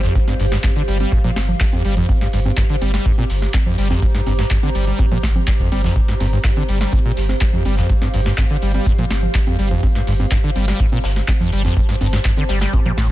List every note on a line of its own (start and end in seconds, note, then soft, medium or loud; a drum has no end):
0.00 0.13 F2 medium
0.00 13.12 G4 medium
0.00 13.12 C5 medium
0.00 2.54 F5 medium
0.00 snare soft
0.00 closed hi-hat medium
0.00 shaker soft
0.15 0.19 G2 medium
0.15 kick loud
0.15 closed hi-hat medium
0.15 shaker medium
0.15 shaker soft
0.28 0.34 G2 medium
0.28 snare soft
0.28 closed hi-hat medium
0.28 high conga medium
0.28 shaker soft
0.39 0.56 G1 loud
0.39 0.46 G2 medium
0.39 open hi-hat loud
0.39 shaker medium
0.52 0.58 G2 medium
0.52 snare medium
0.52 snare soft
0.52 open hi-hat medium
0.52 shaker soft
0.64 0.70 G2 medium
0.64 kick loud
0.64 snare loud
0.64 clap loud
0.64 closed hi-hat medium
0.64 high conga medium
0.64 shaker loud
0.64 shaker soft
0.76 0.83 D3 loud
0.76 closed hi-hat soft
0.76 shaker soft
0.88 1.05 G1 medium
0.88 0.98 G3 medium
0.88 open hi-hat loud
0.88 shaker medium
1.00 1.14 G3 medium
1.00 closed hi-hat soft
1.00 high conga medium
1.00 shaker soft
1.12 1.19 G2 medium
1.12 kick loud
1.12 closed hi-hat medium
1.12 shaker medium
1.12 shaker soft
1.24 1.31 A#2 loud
1.24 closed hi-hat soft
1.24 low conga loud
1.24 shaker soft
1.36 1.53 G1 medium
1.36 snare medium
1.36 snare soft
1.36 open hi-hat loud
1.36 high conga medium
1.36 shaker medium
1.48 low conga medium
1.48 shaker soft
1.60 1.65 G3 medium
1.60 kick loud
1.60 snare loud
1.60 clap loud
1.60 closed hi-hat medium
1.60 shaker soft
1.60 shaker medium
1.73 1.83 F2 medium
1.73 closed hi-hat soft
1.73 high conga medium
1.73 shaker soft
1.85 2.02 G1 medium
1.85 1.95 G3 medium
1.85 open hi-hat loud
1.85 shaker medium
1.97 2.07 F2 medium
1.97 closed hi-hat medium
1.97 low conga medium
1.97 shaker soft
2.09 2.13 G2 medium
2.09 kick loud
2.09 closed hi-hat medium
2.09 high conga medium
2.09 shaker medium
2.09 shaker soft
2.21 2.28 G2 medium
2.21 snare soft
2.21 closed hi-hat medium
2.21 shaker soft
2.33 2.50 G1 loud
2.33 2.40 G2 medium
2.33 open hi-hat loud
2.33 shaker medium
2.45 2.52 G2 medium
2.45 high conga medium
2.45 shaker soft
2.51 6.41 A#5 medium
2.57 2.64 G2 medium
2.57 kick loud
2.57 snare loud
2.57 clap loud
2.57 closed hi-hat medium
2.57 shaker medium
2.57 shaker soft
2.70 2.76 D3 loud
2.70 closed hi-hat soft
2.70 shaker soft
2.81 2.98 G1 medium
2.81 2.92 G3 medium
2.81 open hi-hat loud
2.81 high conga medium
2.81 shaker medium
2.94 3.07 G3 medium
2.94 snare soft
2.94 snare medium
2.94 closed hi-hat soft
2.94 shaker soft
3.06 3.12 G2 medium
3.06 kick loud
3.06 closed hi-hat medium
3.06 shaker soft
3.06 shaker medium
3.18 3.25 A#2 loud
3.18 high conga medium
3.18 shaker soft
3.30 3.47 G1 medium
3.30 snare soft
3.30 open hi-hat loud
3.30 shaker medium
3.42 snare soft
3.42 shaker soft
3.53 3.58 G3 medium
3.53 kick loud
3.53 snare loud
3.53 clap loud
3.53 closed hi-hat medium
3.53 high conga medium
3.53 shaker medium
3.55 shaker soft
3.66 3.76 F2 medium
3.66 low conga medium
3.66 shaker soft
3.78 3.95 G1 medium
3.78 3.88 G3 medium
3.78 open hi-hat loud
3.78 shaker medium
3.90 4.00 F2 medium
3.90 snare soft
3.90 closed hi-hat medium
3.90 high conga medium
3.90 shaker soft
4.02 4.07 G2 medium
4.02 kick loud
4.02 closed hi-hat medium
4.02 shaker medium
4.02 shaker soft
4.15 4.21 G2 medium
4.15 snare soft
4.15 closed hi-hat medium
4.15 shaker soft
4.27 4.43 G1 loud
4.27 4.33 G2 medium
4.27 open hi-hat loud
4.27 high conga medium
4.27 shaker medium
4.39 4.46 G2 medium
4.39 snare medium
4.39 open hi-hat medium
4.39 shaker soft
4.50 4.58 G2 medium
4.50 kick loud
4.50 snare loud
4.50 clap loud
4.50 closed hi-hat medium
4.50 shaker medium
4.50 shaker soft
4.63 4.70 D3 loud
4.63 closed hi-hat soft
4.63 high conga medium
4.63 shaker soft
4.75 4.92 G1 medium
4.75 4.85 G3 medium
4.75 open hi-hat loud
4.75 shaker medium
4.87 5.01 G3 medium
4.87 closed hi-hat soft
4.87 shaker soft
4.99 5.06 G2 medium
4.99 kick loud
4.99 closed hi-hat medium
4.99 high conga medium
4.99 shaker medium
4.99 shaker soft
5.11 5.18 A#2 loud
5.11 closed hi-hat soft
5.11 low conga medium
5.11 shaker soft
5.23 5.40 G1 medium
5.23 kick medium
5.23 snare soft
5.23 snare medium
5.23 open hi-hat loud
5.23 shaker medium
5.36 high conga medium
5.36 low conga medium
5.36 shaker soft
5.47 5.52 G3 medium
5.47 kick loud
5.47 snare loud
5.47 clap loud
5.47 closed hi-hat medium
5.47 shaker soft
5.47 shaker medium
5.60 5.70 F2 medium
5.60 kick medium
5.60 closed hi-hat soft
5.60 shaker soft
5.72 5.89 G1 loud
5.72 5.82 G3 medium
5.72 open hi-hat loud
5.72 high conga medium
5.72 shaker medium
5.84 5.94 F2 medium
5.84 snare loud
5.84 closed hi-hat medium
5.84 low conga medium
5.84 shaker medium
5.84 shaker soft
5.96 kick loud
5.96 closed hi-hat medium
5.96 shaker soft
5.96 shaker loud
6.08 6.15 G2 medium
6.08 snare soft
6.08 closed hi-hat soft
6.08 shaker soft
6.20 6.37 G1 loud
6.20 6.27 G2 medium
6.20 open hi-hat loud
6.20 high conga medium
6.20 shaker medium
6.32 6.39 G2 medium
6.32 shaker soft
6.38 10.28 F5 medium
6.44 6.51 G2 medium
6.44 kick loud
6.44 snare loud
6.44 clap loud
6.44 closed hi-hat medium
6.44 shaker medium
6.44 shaker soft
6.57 6.63 D3 loud
6.57 closed hi-hat soft
6.57 high conga medium
6.57 shaker soft
6.69 6.85 G1 medium
6.69 6.79 G3 medium
6.69 open hi-hat loud
6.69 shaker medium
6.81 6.94 G3 medium
6.81 snare medium
6.81 snare soft
6.81 closed hi-hat soft
6.81 shaker soft
6.92 7.00 G2 medium
6.92 kick loud
6.92 closed hi-hat medium
6.92 high conga medium
6.92 shaker medium
6.92 shaker soft
7.05 7.12 A#2 loud
7.05 shaker soft
7.17 7.34 G1 medium
7.17 snare soft
7.17 open hi-hat loud
7.17 shaker medium
7.29 snare soft
7.29 high conga medium
7.29 shaker soft
7.41 7.45 G3 medium
7.41 kick loud
7.41 snare loud
7.41 clap loud
7.41 closed hi-hat medium
7.41 shaker soft
7.41 shaker medium
7.53 7.63 F2 medium
7.53 low conga medium
7.53 shaker soft
7.65 7.82 G1 medium
7.65 7.76 G3 medium
7.65 open hi-hat loud
7.65 high conga medium
7.65 shaker medium
7.77 7.88 F2 medium
7.77 snare medium
7.77 closed hi-hat medium
7.77 shaker soft
7.89 7.94 G2 medium
7.89 kick loud
7.89 closed hi-hat medium
7.89 shaker medium
7.89 shaker soft
8.02 8.08 G2 medium
8.02 snare soft
8.02 closed hi-hat medium
8.02 high conga medium
8.02 shaker soft
8.14 8.31 G1 loud
8.14 8.21 G2 medium
8.14 open hi-hat loud
8.14 shaker medium
8.26 8.33 G2 medium
8.26 snare medium
8.26 open hi-hat medium
8.26 shaker soft
8.37 8.45 G2 medium
8.37 kick loud
8.37 snare loud
8.37 clap loud
8.37 closed hi-hat medium
8.37 high conga medium
8.37 shaker medium
8.37 shaker soft
8.50 8.57 D3 loud
8.50 closed hi-hat soft
8.50 shaker soft
8.62 8.79 G1 medium
8.62 8.72 G3 medium
8.62 open hi-hat loud
8.62 shaker medium
8.74 8.88 G3 medium
8.74 closed hi-hat soft
8.74 high conga medium
8.74 shaker soft
8.86 8.93 G2 medium
8.86 kick loud
8.86 closed hi-hat medium
8.86 shaker soft
8.86 shaker medium
8.99 9.05 A#2 loud
8.99 closed hi-hat soft
8.99 low conga medium
8.99 shaker soft
9.10 9.27 G1 medium
9.10 snare soft
9.10 snare medium
9.10 open hi-hat loud
9.10 high conga medium
9.10 shaker medium
9.23 low conga medium
9.23 shaker soft
9.35 9.39 G3 medium
9.35 kick loud
9.35 snare loud
9.35 clap loud
9.35 closed hi-hat medium
9.35 shaker soft
9.35 shaker medium
9.47 9.57 F2 medium
9.47 closed hi-hat soft
9.47 high conga medium
9.47 shaker soft
9.59 9.76 G1 medium
9.59 9.69 G3 medium
9.59 open hi-hat loud
9.59 shaker medium
9.71 9.81 F2 medium
9.71 closed hi-hat medium
9.71 low conga medium
9.71 shaker soft
9.83 9.87 G2 medium
9.83 kick loud
9.83 closed hi-hat medium
9.83 high conga medium
9.83 shaker loud
9.83 shaker soft
9.95 10.02 G2 medium
9.95 snare soft
9.95 closed hi-hat medium
9.95 shaker soft
10.07 10.24 G1 loud
10.07 10.14 G2 medium
10.07 open hi-hat loud
10.07 shaker medium
10.20 10.26 G2 medium
10.20 high conga medium
10.20 shaker soft
10.25 13.12 A5 medium
10.31 10.38 G2 medium
10.31 kick loud
10.31 snare loud
10.31 clap loud
10.31 closed hi-hat medium
10.31 shaker medium
10.31 shaker soft
10.44 10.50 D3 loud
10.44 closed hi-hat soft
10.44 shaker soft
10.55 10.72 G1 medium
10.55 10.66 G3 medium
10.55 open hi-hat loud
10.55 high conga medium
10.55 shaker medium
10.68 10.82 G3 medium
10.68 snare soft
10.68 snare medium
10.68 closed hi-hat soft
10.68 shaker soft
10.80 10.87 G2 medium
10.80 kick loud
10.80 closed hi-hat medium
10.80 shaker medium
10.92 10.99 A#2 loud
10.92 high conga medium
10.92 shaker soft
11.04 11.21 G1 medium
11.04 snare loud
11.04 open hi-hat loud
11.04 shaker medium
11.16 snare soft
11.16 shaker soft
11.28 11.32 G3 medium
11.28 kick loud
11.28 clap loud
11.28 closed hi-hat medium
11.28 high conga medium
11.28 shaker medium
11.28 shaker soft
11.40 11.50 F2 medium
11.40 snare soft
11.40 low conga medium
11.40 shaker soft
11.52 11.69 G1 loud
11.52 11.63 G3 medium
11.52 open hi-hat loud
11.52 shaker medium
11.65 11.75 F2 medium
11.65 snare soft
11.65 closed hi-hat medium
11.65 high conga medium
11.65 shaker soft
11.77 11.81 G2 medium
11.77 kick loud
11.77 closed hi-hat medium
11.77 shaker soft
11.77 shaker medium
11.89 11.96 G2 medium
11.89 snare soft
11.89 closed hi-hat medium
11.89 shaker soft
12.01 12.18 G1 loud
12.01 12.08 G2 medium
12.01 open hi-hat loud
12.01 high conga medium
12.01 shaker medium
12.13 12.20 G2 medium
12.13 snare medium
12.13 open hi-hat medium
12.13 shaker soft
12.25 12.32 G2 medium
12.25 kick loud
12.25 snare loud
12.25 clap loud
12.25 closed hi-hat medium
12.25 shaker medium
12.25 shaker soft
12.37 12.44 D3 loud
12.37 closed hi-hat soft
12.37 high conga medium
12.37 shaker soft
12.49 12.66 G1 medium
12.49 12.59 G3 medium
12.49 snare loud
12.49 open hi-hat loud
12.49 shaker medium
12.61 12.75 G3 medium
12.61 snare loud
12.61 snare medium
12.61 shaker medium
12.61 shaker soft
12.73 12.80 G2 medium
12.73 kick loud
12.73 closed hi-hat medium
12.73 high conga medium
12.73 shaker medium
12.73 shaker soft
12.86 12.92 A#2 loud
12.86 closed hi-hat soft
12.86 low conga medium
12.86 shaker soft
12.97 13.12 G1 medium
12.97 13.08 A2 medium
12.97 kick medium
12.97 snare medium
12.97 open hi-hat loud
12.97 shaker medium